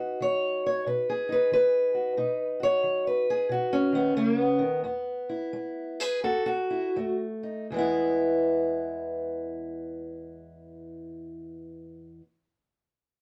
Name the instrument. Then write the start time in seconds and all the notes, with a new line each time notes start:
steel-string acoustic guitar
Already playing: B2 D#4 F#4 B4
0.20 D#3 C#5
0.66 C#5
0.86 B2 B4
1.10 G#4
1.29 D#4 B4
1.52 D#3 B4
1.94 F#4
2.17 B2 D#4
2.60 F#4 C#5
2.83 D#3
3.07 B4
3.30 G#4
3.49 B2 F#4
3.73 C#4
3.92 D#3 B3
4.16 C#3 A#3
4.40 B3
4.59 D#3
4.84 E2 B3
5.29 E4
5.53 G#3
6.00 G#4 B4
6.24 E2 F#4 A4
6.46 F#4
6.70 E4
6.96 F2 A3
7.43 D#4
7.70 E2 E3 G#3
7.76 B3 E4